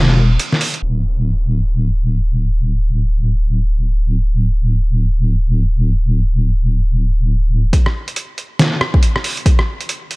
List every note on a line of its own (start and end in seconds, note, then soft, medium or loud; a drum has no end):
0.00 0.38 E1 loud
0.40 closed hi-hat medium
0.40 crash soft
0.53 snare soft
0.61 open hi-hat loud
0.74 closed hi-hat medium
0.82 7.71 D1 medium
7.73 kick loud
7.73 closed hi-hat medium
7.86 cross-stick soft
8.08 closed hi-hat medium
8.16 closed hi-hat medium
8.38 closed hi-hat medium
8.59 snare loud
8.59 closed hi-hat medium
8.81 cross-stick medium
8.94 kick loud
9.03 closed hi-hat medium
9.16 cross-stick soft
9.24 open hi-hat medium
9.37 closed hi-hat soft
9.46 kick loud
9.46 closed hi-hat medium
9.59 cross-stick soft
9.81 closed hi-hat medium
9.89 closed hi-hat medium
10.11 closed hi-hat medium